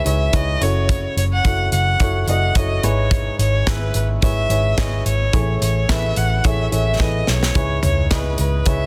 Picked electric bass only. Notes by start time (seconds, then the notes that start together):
0.06 C#2
0.33 C#2
0.61 F#1
1.17 F#1
1.45 F#1
1.72 F#1
2.00 F#1
2.27 F#1
2.55 F#1
2.83 G#1
3.39 G#1
3.67 G#1
3.95 G#1
4.22 G#1
4.50 G#1
5.06 G#1
5.33 A1
5.61 A1
5.89 A1
6.17 A1
6.45 A1
6.72 A1
7.00 A1
7.28 B1
7.55 C#2
7.83 C#2
8.11 C#2
8.39 C#2
8.66 C#2